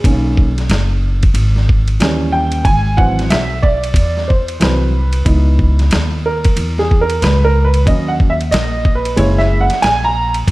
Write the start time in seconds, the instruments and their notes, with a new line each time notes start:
0.04 upright bass B1, upright piano D#3 A#3 C#4, kick, ride
0.37 kick
0.58 snare, ride
0.69 upright bass F#1, snare, hi-hat pedal, ride
1.23 kick, ride
1.34 upright bass G#1, ride
1.56 snare
1.69 kick
1.88 ride
2.00 upright bass D#2, upright piano E3 G3 C#4, snare, hi-hat pedal, ride
2.32 upright piano G5
2.52 ride
2.65 upright bass G#1, upright piano G#5, kick, ride
2.97 upright piano E3 F#3 C4 F#5, kick
3.19 snare, ride
3.30 upright bass B1, upright piano E5, snare, hi-hat pedal, ride
3.62 upright piano D5, kick
3.84 ride
3.94 upright bass E2, kick, ride
4.17 snare
4.28 upright piano C5, kick
4.48 ride
4.60 upright bass C2, upright piano E3 F#3 C4 B4, snare, hi-hat pedal, ride
5.13 ride
5.25 upright bass C#2, upright piano B3 D#4 E4, kick, ride
5.59 kick
5.79 snare, ride
5.91 upright bass D#2, snare, hi-hat pedal, ride
6.26 upright piano A#4
6.44 kick, ride
6.56 upright bass E2, ride
6.78 upright piano G#4, snare
6.91 kick
7.01 upright piano A#4
7.10 ride
7.22 upright bass C#2, upright piano B4, snare, hi-hat pedal, ride
7.45 upright piano A#4
7.65 upright piano B4
7.74 ride
7.86 upright bass D#2, upright piano F#3 A#3 C#4 D#5, kick, ride
8.08 upright piano F#5
8.20 kick
8.30 upright piano E5
8.41 ride
8.51 upright bass A#1, upright piano D#5, snare, hi-hat pedal, ride
8.85 kick
8.95 upright piano B4
9.05 ride
9.16 upright bass F#1, upright piano G#3 A#3 E4 C#5, ride
9.38 upright piano E5, snare
9.61 upright piano F#5
9.70 muted upright bass stroke, snare, ride
9.82 upright bass A#1, upright piano G#5, snare, hi-hat pedal, ride
10.04 upright piano A#5
10.34 ride
10.48 upright bass B1, kick, ride